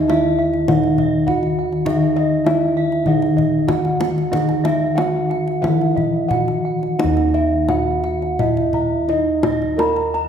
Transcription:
Already playing: D#2 D#3 D#4 D#5
0.08 E4 E5, kendang slap, kendang high
0.39 E5
0.54 kendang slap
0.68 D#3 D#4 D#5 F#5, kendang slap, kendang high, kendang low
0.84 kendang slap
0.98 D#5, kendang low
1.27 E4 F#4 F#5, kendang slap, kendang low
1.43 kendang slap
1.59 F#5
1.72 kendang slap
1.86 D#3 D#4 D#5 E5, kendang low
2.16 D#5, kendang slap
2.45 E4 E5, kendang slap, kendang high
2.77 E5
2.92 kendang slap
3.04 D#3 D#4 D#5 F#5, kendang slap, kendang low
3.22 kendang slap
3.37 D#5, kendang low
3.67 E4 F#4 F#5, kendang slap, kendang high, kendang low
3.85 kendang slap
4.00 F#5, kendang high
4.18 kendang slap
4.31 D#3 D#4 D#5 F#5, kendang high, kendang low
4.49 kendang slap
4.64 D#5 E5, kendang slap, kendang high
4.96 E4 F#4 F#5, kendang slap, kendang high
5.30 F#5, kendang slap
5.48 kendang slap
5.62 D#3 E3 E4 E5 F#5, kendang slap, kendang high, kendang low
5.81 kendang slap
5.95 D#5 E5, kendang low
6.29 E4 F#5, kendang slap, kendang low
6.33 F#4
6.48 kendang slap
6.65 F#5
6.83 kendang slap
6.99 D#4 D#5 F#5, kendang high
7.04 D#2
7.17 kendang slap
7.34 D#5 E5, kendang slap
7.69 E4 F#4 F#5, kendang high, kendang low
8.04 F#5, kendang slap
8.22 kendang slap
8.39 E4 D#5 E5, kendang slap, kendang low
8.57 kendang slap
8.73 E5 A#5, kendang low
9.08 D#4 E4 D#5, kendang slap
9.43 D#5, kendang slap, kendang high, kendang low
9.62 kendang slap
9.76 A#4 A#5 B5, kendang high
9.96 kendang slap
10.14 A#5, kendang slap

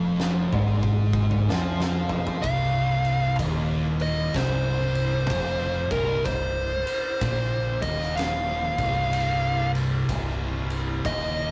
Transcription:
Already playing: F1 F2
0.20 snare
0.53 G#1 G#2, mid tom
0.83 kick
1.13 kick
1.31 mid tom
1.49 F2 F3, snare
1.80 snare
2.09 floor tom
2.27 floor tom
2.42 C1 C2 F5, kick, ride
3.05 ride
3.39 D#1 D#2, kick, ride
4.00 D#5, ride
4.34 C1 C2 C5, kick, snare, ride
4.95 ride
5.30 F1 F2, kick, ride
5.91 C1 C2 A#4, kick, ride
6.25 C1 C2 C5, kick, ride
6.87 ride
7.21 A#1 A#2, kick, ride
7.82 D#1 D#2 D#5, kick, ride
8.02 snare
8.16 F5, snare, ride
8.78 C1 C2, kick, ride
9.13 ride
9.75 ride
10.09 C1 C2, kick, ride
10.70 ride
11.05 D#1 D#2 D#5, kick, ride

